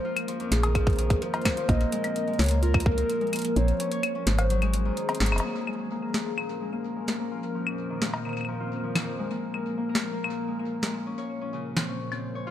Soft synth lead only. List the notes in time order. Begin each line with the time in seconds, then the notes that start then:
Already playing: C5
0.52 G#4
1.22 C5
1.69 D#5
2.39 C#5
2.62 F4
2.86 A#4
3.56 C#5
4.26 C5
4.34 C#5
4.40 C5